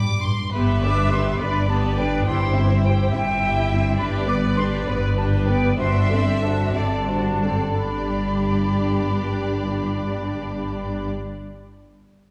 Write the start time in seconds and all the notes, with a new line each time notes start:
Already playing: D6
0.09 G2
0.23 G2 C6
0.39 G2
0.52 G1 G2 B3 G4 B4 E5 B5
0.83 D4 B4 D5 D6
1.11 B3 G4 B4 C6
1.40 G1 G2 D4 B4 D5 B5
1.70 B3 G4 B4 A5
1.99 D4 B4 D5 G5
2.26 G1 G2 E4 G4 C5 G5 C6
2.56 C4 E4 E5
2.84 E4 G4 G5
3.13 G1 G2 C4 E4 E5 G5
3.42 E4 G4 G5
3.70 C4 E4 E5
3.98 G1 G2 D4 G4 B4 D5 B5
4.28 B3 B4 D5 D6
4.57 D4 G4 B4 C6
4.87 G1 G2 B3 B4 D5 B5
5.17 D4 G4 B4 A5
5.47 B3 B4 D5 G5
5.78 G1 G2 D4 F#4 C5 E5 C6
6.10 C4 A4 D5
6.42 D4 F#4 C5 A5
6.74 G1 G2 C4 A4 D5 A5
7.09 D4 F#4 C5
7.44 C4 A4 D5
7.78 G1 G2 D4 G4 D5 B5